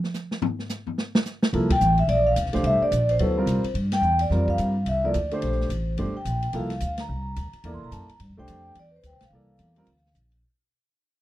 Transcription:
0.04 snare
0.14 snare, hi-hat pedal
0.31 snare
0.42 floor tom
0.59 snare
0.69 snare, hi-hat pedal
0.87 floor tom
0.98 snare
1.15 snare
1.25 snare, hi-hat pedal
1.43 snare
1.53 upright bass C2, grand piano F3 A#3 E4 A4, ride
1.70 vibraphone G5, kick, ride
1.81 upright bass A1, hi-hat pedal
1.98 vibraphone E5, ride
2.08 upright bass A#1, vibraphone D5, ride
2.27 vibraphone F5
2.36 upright bass D2, hi-hat pedal, ride
2.46 upright bass C2, snare
2.53 upright bass A#1, grand piano A3 D4 G4 C5, snare, ride
2.63 upright bass C2, vibraphone E5, ride
2.81 vibraphone D5, muted upright bass stroke
2.91 upright bass A#1, hi-hat pedal, ride
3.09 vibraphone C5, ride
3.19 upright bass D2, grand piano F#3 B3 E4 A4, ride
3.37 grand piano G3 C4 F4 A#4
3.46 upright bass C2, hi-hat pedal, ride
3.63 muted upright bass stroke, ride
3.74 upright bass G2, ride
3.92 vibraphone G5, snare, ride
4.02 upright bass E2, hi-hat pedal
4.19 vibraphone D5, ride
4.30 upright bass F2, grand piano G3 C4 F4 A#4, snare
4.48 vibraphone F5, kick
4.58 upright bass G2, hi-hat pedal, ride
4.86 upright bass C2, vibraphone E5, ride
5.04 grand piano F3 A#3 E4 A4, vibraphone D5
5.14 upright bass D2, hi-hat pedal, ride
5.31 grand piano A3 D4 G4 C5, vibraphone C5, ride
5.42 upright bass A#1, ride
5.52 snare
5.61 snare
5.69 upright bass A1, hi-hat pedal, ride
5.97 upright bass G1, grand piano A3 D4 G4 C5, ride
6.15 vibraphone G5, muted upright bass stroke
6.25 upright bass A#1, hi-hat pedal, ride
6.42 ride
6.53 upright bass C2, grand piano F3 A#3 E4 A4, vibraphone F5, ride
6.70 snare, ride
6.80 upright bass D2, vibraphone F5, hi-hat pedal, ride
6.97 vibraphone A#5, snare, ride
7.09 upright bass C2
7.36 upright bass D2, hi-hat pedal, ride
7.53 muted upright bass stroke, ride
7.64 upright bass E2, grand piano A#3 E4 A4 D5, ride
7.73 upright bass C2, vibraphone C6
7.82 upright bass A#1, vibraphone A#5
7.91 upright bass F#2, vibraphone A5, hi-hat pedal, ride
8.01 vibraphone A#5
8.09 muted upright bass stroke, ride
8.20 upright bass G2, ride
8.29 upright bass F2
8.37 upright bass C2, grand piano A3 D4 G4 C5, vibraphone G5
8.48 upright bass F2, hi-hat pedal, ride
8.75 upright bass E2, ride
8.79 vibraphone D5
8.91 vibraphone B4
8.96 vibraphone C5
9.03 upright bass D2, vibraphone G5, hi-hat pedal, ride
9.12 upright bass C2
9.20 upright bass A#1, snare, ride
9.25 vibraphone F5
9.30 upright bass C2, grand piano E3 A#3 A4
9.35 grand piano D5
9.59 upright bass E2, hi-hat pedal, ride
9.76 grand piano G3 C4 F4 A#4, ride
9.87 upright bass D2, ride
9.96 snare
10.06 snare
10.15 upright bass A#1, hi-hat pedal, ride
10.32 ride

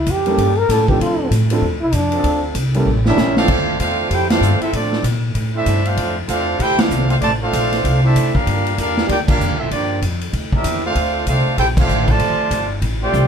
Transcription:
Already playing: trombone E4
0.06 upright bass F2, kick, hi-hat pedal, ride
0.11 trombone G4
0.26 grand piano G3 A#3 C#4 E4 A4, ride
0.38 upright bass G2, trombone section G3 A#3 C#4 A4, kick, ride
0.58 trombone A#4
0.69 upright bass A2, trombone section G3 A#3 C#4 A4, trombone A4, kick, snare, hi-hat pedal, ride
0.88 grand piano F3 C4 D4 E4 A4, trombone G4, kick
1.00 upright bass D2, trombone F4, kick, ride
1.31 upright bass A2, kick, hi-hat pedal, ride
1.50 grand piano F3 C4 D4 E4 A4, ride
1.62 upright bass E2, kick
1.73 upright bass D2
1.81 upright bass C2, trombone E4
1.92 upright bass F2, trombone D4, kick, hi-hat pedal, ride
2.12 trombone section F3 C4 D4 A4, ride
2.24 upright bass D2, kick, ride
2.55 upright bass C2, kick, hi-hat pedal, ride
2.74 grand piano G3 A#3 C#4 E4 A4, ride
2.86 upright bass A1
3.05 trombone section G3 C#4 E4, trumpet section C#4 G4 A#4 E5, trombone D4, snare
3.17 upright bass A#1, trombone C#4, snare, hi-hat pedal
3.35 trombone section F3 A3 C4 D4 F4 A4, trumpet section D4 A4 C5 F5, snare
3.48 upright bass D2, kick, crash
3.78 upright bass E2, trombone section A3 C4 F4, trumpet section D4 A4 C5 F5, kick, hi-hat pedal, ride
4.10 upright bass F2, trumpet section E4 A4 C5 G5, trombone section G4, kick, ride
4.27 trombone section A3 C4 F4, trumpet section D4 A4 C5 F5, snare, ride
4.41 upright bass G2, hi-hat pedal
4.60 trumpet section C4 F4 A4 E5, trombone section E4, muted upright bass stroke, ride
4.71 upright bass A2, trombone section F3 A3 D4, trumpet section C4 F4 A4 D5, kick, ride
4.93 snare
5.03 upright bass A#2, kick, hi-hat pedal, ride
5.35 upright bass A2, kick, ride
5.53 trombone section A3 C4 E4, trumpet section D4 A4 C5 E5
5.66 upright bass G2, kick, hi-hat pedal, ride
5.83 trombone section A3 C4 F4, trumpet section D4 A4 C5 F5, ride
5.97 upright bass F2, kick, ride
6.28 upright bass E2, trombone section A3 C4 F4, trumpet section D4 A4 C5 F5, kick, hi-hat pedal, ride
6.58 upright bass D2, trumpet section E4 A4 C5 G5, trombone section G4, kick, ride
6.79 trombone section A3 C4 F4, trumpet section D4 A4 C5 F5, snare, ride
6.90 upright bass C2, hi-hat pedal
7.09 trombone section A3 C4 F4, trumpet section D4 A4 C5 F5, ride
7.21 upright bass A1, trombone section C3 F3 A3, trumpet section F4 C5 D5 A5, kick, ride
7.41 trombone section A3 C4 F4, trumpet section D4 A4 C5 F5
7.53 upright bass A#1, kick, hi-hat pedal, ride
7.72 snare, ride
7.84 upright bass C2, kick, ride
8.03 trombone section A3 C4 E4, trumpet section D4 A4 C5 E5
8.15 upright bass D2, kick, hi-hat pedal, ride
8.34 trombone section A#3 D4 F4, trumpet section D4 G4 A#4 F5, kick
8.47 upright bass G2, kick, ride
8.66 ride
8.76 upright bass E2, trombone section A#3 D4 F4, trumpet section D4 G4 A#4 F5, kick, hi-hat pedal, ride
8.97 snare
9.07 upright bass D2, trombone section A#3 D4 G4, trumpet section F4 A#4 D5 G5, kick, ride
9.27 trombone section A#3 D4 F4, trumpet section D4 G4 A#4 F5, kick, crash
9.40 upright bass F2, hi-hat pedal
9.51 upright bass D2
9.58 upright bass A#1, trumpet section C4 F4 A4 E5, trombone section E4
9.71 upright bass G2, trombone section F3 A#3 D4, trumpet section A#3 F4 G4 D5, kick, ride
10.02 upright bass F2, kick, hi-hat pedal, ride
10.21 ride
10.33 upright bass D2, kick, ride
10.52 trombone section F3 A#3 E4, trumpet section D4 G4 A#4 E5, kick
10.64 upright bass E2, kick, hi-hat pedal, ride
10.84 trombone section A3 C4 F4, trumpet section D4 A4 C5 F5
10.95 upright bass D2, kick, ride
11.26 upright bass C2, trombone section A3 C4 F4, trumpet section D4 A4 C5 F5, kick, hi-hat pedal, ride
11.47 muted upright bass stroke
11.57 upright bass A#1, trumpet section E4 A4 C5 G5, trombone section G4, kick, ride
11.77 trombone section A3 C4 F4, trumpet section D4 A4 C5 F5, kick, crash
11.89 upright bass A1, hi-hat pedal
12.08 trombone section C3 F3 A3, trumpet section F4 C5 D5 A5, kick, ride
12.19 upright bass F1, kick, ride
12.39 muted upright bass stroke
12.51 upright bass G1, kick, hi-hat pedal, ride
12.82 upright bass A1, kick, ride
13.02 trombone section A3 C4 G4, trumpet section F4 C5 D5 G5
13.13 upright bass C2, hi-hat pedal, high tom

